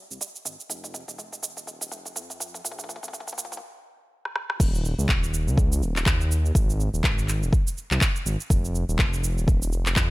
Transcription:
0.11 detuned saw bass C2, shaker
0.21 mid tom, shaker
0.36 shaker
0.45 detuned saw bass G#1, mid tom, shaker
0.60 shaker
0.70 detuned saw bass F1, mid tom, shaker
0.84 mid tom, shaker
0.94 mid tom, shaker
1.08 detuned saw bass D#1, mid tom, shaker
1.18 detuned saw bass F1, mid tom, shaker
1.32 mid tom, shaker
1.43 mid tom, shaker
1.57 detuned saw bass D#1, mid tom, shaker
1.67 mid tom, shaker
1.81 mid tom, shaker
1.91 detuned saw bass F1, mid tom, shaker
2.05 mid tom, shaker
2.16 detuned saw bass F2, mid tom, shaker
2.30 mid tom, shaker
2.40 mid tom, shaker
2.54 mid tom, shaker
2.65 detuned saw bass A#1, mid tom, shaker
2.72 mid tom
2.79 mid tom, shaker
2.84 mid tom
2.89 mid tom, shaker
2.96 mid tom
3.03 detuned saw bass G#1, mid tom, shaker
3.08 mid tom
3.13 detuned saw bass A#1, mid tom, shaker
3.20 mid tom
3.27 mid tom, shaker
3.33 mid tom
3.38 mid tom, shaker
3.45 mid tom
3.52 detuned saw bass G#1, mid tom, shaker
3.57 mid tom
4.25 cross-stick
4.36 cross-stick
4.50 cross-stick
4.60 detuned saw bass D#1, kick, crash, shaker
4.75 shaker
4.85 shaker
4.98 detuned saw bass C#2, shaker
5.09 detuned saw bass D#1, kick, clap, shaker
5.24 shaker
5.34 shaker
5.47 detuned saw bass C#2, shaker
5.58 kick, shaker
5.72 shaker
5.82 detuned saw bass D#1, shaker
5.96 clap, shaker
6.06 detuned saw bass D#2, kick, clap, shaker
6.21 shaker
6.31 shaker
6.45 shaker
6.55 detuned saw bass G#1, kick, shaker
6.70 shaker
6.80 shaker
6.94 detuned saw bass D#1, shaker
7.04 detuned saw bass G#1, kick, clap, shaker
7.19 shaker
7.28 clap, shaker
7.42 detuned saw bass D#1, shaker
7.53 kick, shaker
7.67 shaker
7.78 shaker
7.91 detuned saw bass C2, clap, shaker
8.01 kick, clap, shaker
8.16 shaker
8.26 detuned saw bass G#1, shaker
8.40 shaker
8.50 detuned saw bass F1, kick, shaker
8.65 shaker
8.75 shaker
8.89 detuned saw bass D#1, shaker
8.99 detuned saw bass F1, kick, clap, shaker
9.14 shaker
9.24 shaker
9.38 detuned saw bass D#1, shaker
9.48 kick, shaker
9.62 shaker
9.72 detuned saw bass F1, shaker
9.86 clap, shaker
9.96 detuned saw bass F2, kick, clap, shaker

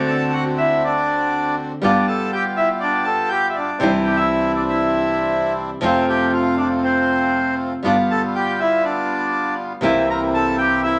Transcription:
Already playing: upright bass D2, nylon-string guitar D3 A3 C4 F#4, bandoneon C4 D4 F#4
0.07 bandoneon A4 A5
0.33 bandoneon F#4 F#5
0.58 bandoneon E4 E5
0.85 bandoneon D4 D5
1.81 upright bass G1, nylon-string guitar G3 B3 F4, bandoneon B3 D4 F4 G4 D5
2.07 bandoneon A4 A5
2.32 bandoneon G4 G5
2.57 bandoneon E4 E5
2.80 bandoneon D4 D5
3.04 bandoneon A4 A5
3.28 bandoneon G4 G5
3.49 bandoneon E5
3.54 bandoneon D4 D5
3.79 upright bass C2, nylon-string guitar C3 E3 G3 D4, bandoneon C4 D4 E4 C5
3.83 nylon-string guitar E4
4.04 bandoneon G4 G5
4.17 bandoneon E4 E5
4.56 bandoneon D4 D5
4.69 bandoneon E4 E5
5.81 upright bass F2, nylon-string guitar C3 F3 A3 C4 F4, bandoneon A3 C4 F4 C5
5.85 bandoneon C4
6.08 bandoneon G4 G5
6.33 bandoneon F4 F5
6.57 bandoneon D4 D5
6.83 bandoneon C4 C5
7.83 upright bass G1, nylon-string guitar G3 B3 F4, bandoneon G3 B3 D4 F4 D5
8.10 bandoneon A4 A5
8.35 bandoneon G4 G5
8.60 bandoneon E4 E5
8.84 bandoneon D4 D5
9.81 upright bass C2, nylon-string guitar C3 E3 A#3 C4 E4, bandoneon A#3 C4 E4 E5
10.10 bandoneon A#4 A#5
10.34 bandoneon A4 A5
10.58 bandoneon G4 G5
10.83 bandoneon E4 E5

